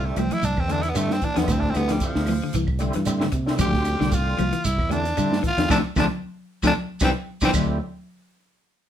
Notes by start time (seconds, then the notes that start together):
Already playing: C2 D3 G3 C4 E4
0.05 A3
0.16 C2 F3 C4, closed hi-hat, high conga, low conga, claves, shekere
0.31 E3 E4, closed hi-hat, low conga
0.43 C2 D4, closed hi-hat, shekere
0.57 E2 C4, kick, claves
0.68 D3 G3 C4 D4 E4, closed hi-hat, high conga, shekere
0.82 E4, snare, closed hi-hat
0.89 B3
0.94 G2 D3 G3 A3 C4 E4, closed hi-hat, claves, shekere
1.08 snare, high conga
1.13 C4
1.21 E3 D4, kick, closed hi-hat, high conga, shekere
1.34 E2 D3 F3 G3 B3 C4 E4, snare, closed hi-hat
1.47 D2 D3 G3 C4 E4, kick, closed hi-hat, low conga, claves, shekere
1.52 C4
1.60 D4, kick, high conga
1.70 C4
1.74 D2 G3 B3, snare, closed hi-hat, claves, shekere
1.89 F3 G3, snare, closed hi-hat
2.00 kick, closed hi-hat, shekere
2.05 F3
2.15 D2, snare
2.26 E3, open hi-hat, high conga, low conga, claves, shekere
2.44 D3
2.53 C2 E3, closed hi-hat, shekere
2.67 kick, claves
2.79 D3 G3 C4 E4, closed hi-hat, high conga, shekere
2.93 G2 E3, snare, closed hi-hat
3.05 D3 G3 C4 E4, closed hi-hat, high conga, claves, shekere
3.21 D3, snare, high conga
3.32 C3, muted clean electric guitar stroke, kick, closed hi-hat, high conga, shekere
3.46 D3 G3 C4 E4, snare
3.57 D2 D3 F3 G3 C4 F4, kick, closed hi-hat, low conga, claves, shekere
3.61 G4
3.73 kick, snare, high conga
3.85 snare, closed hi-hat, claves, shekere
3.99 C2 D3, snare, high conga
4.12 F4, kick, snare, closed hi-hat, shekere
4.38 C2 F3, closed hi-hat, high conga, low conga, claves, shekere
4.53 E3, closed hi-hat
4.65 C2 E4, closed hi-hat, shekere
4.78 E2, kick, claves
4.89 D3 G3 C4 D4 E4, closed hi-hat, high conga, shekere
5.05 snare, closed hi-hat
5.17 G2 D3 G3 C4 E4, closed hi-hat, claves, shekere
5.31 snare, high conga
5.43 E3, kick, closed hi-hat, high conga, shekere
5.47 F4
5.57 E2 D3 F3 G3 C4 E4, snare, closed hi-hat
5.69 D2 C3 D3 F3 A3 C4 D4, kick, snare, low conga, claves, shekere
5.96 D2 C3 D3 F3 A3 C4 D4, kick, snare, low conga, claves, shekere
6.63 D2 C3 D3 F3 A3 C4 D4, kick, snare, low conga, claves, shekere
6.67 D4
7.00 C2 C3 E3 G3 B3 C4, kick, snare, low conga, claves, shekere
7.04 C4
7.41 C2 C3 E3 G3 B3 C4, kick, snare, low conga, claves, shekere
7.54 D2 D3 G3 C4 E4, kick, crash, low conga, claves, shekere